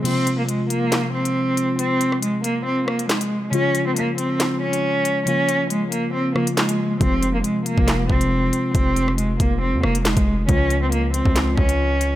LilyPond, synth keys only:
\new Staff \with { instrumentName = "Synth keys" } { \clef bass \time 4/4 \key f \minor \tempo 4 = 138 <c f aes f'>1~ | <c f aes f'>1 | <des f aes f'>1 | <des f bes f'>2~ <des f bes f'>8 <des f bes f'>4. |
<c f aes f'>1~ | <c f aes f'>1 | <des f aes f'>1 | }